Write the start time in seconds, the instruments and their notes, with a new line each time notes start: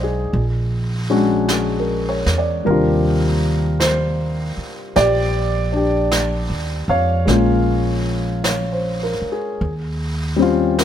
Already playing: upright bass B1, grand piano G#3 C4 D#4 C5 D5 D#5 G5
0.03 grand piano G#4
0.31 upright bass A#1, brush sweep
1.10 grand piano G#3 C#4 D4 F#4
1.48 grand piano G#4, brush sweep, snare, hi-hat pedal
1.80 grand piano A#4
2.09 grand piano C#5
2.26 upright bass E2, snare
2.38 grand piano D5
2.65 upright bass D#2, grand piano C3 G3 D4 G4 A#4, brush sweep
2.70 grand piano F4
3.80 grand piano C5, brush sweep, snare, hi-hat pedal
4.57 muted upright bass stroke
4.96 upright bass A#1, grand piano G4 D5, brush sweep, snare
5.72 grand piano D4 G4
6.11 brush sweep, snare, hi-hat pedal
6.50 upright bass D#2
6.88 upright bass F2, grand piano C#5 F5
7.25 upright bass A#1, grand piano G#3 A#3 C#4, brush sweep, snare
7.30 grand piano F4
8.44 grand piano C#5, brush sweep, snare, hi-hat pedal
8.72 grand piano C5
9.03 grand piano A#4
9.22 muted upright bass stroke
9.32 grand piano G#4
9.61 upright bass D#2, brush sweep
10.36 grand piano G3 C4 C#4
10.42 grand piano F4
10.79 grand piano A#4, brush sweep, snare, hi-hat pedal